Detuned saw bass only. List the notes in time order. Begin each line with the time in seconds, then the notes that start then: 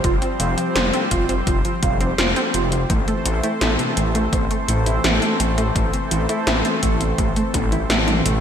0.04 F1
0.40 F1
0.76 F1
1.11 F1
1.47 F1
1.83 F1
2.19 F1
2.54 F1
2.90 A1
3.26 A1
3.61 A1
3.97 A1
4.33 A1
4.68 A1
5.04 A1
5.40 A1
5.76 A1
6.11 A1
6.47 A1
6.83 A1
7.18 A1
7.54 A1
7.90 A1
8.26 A1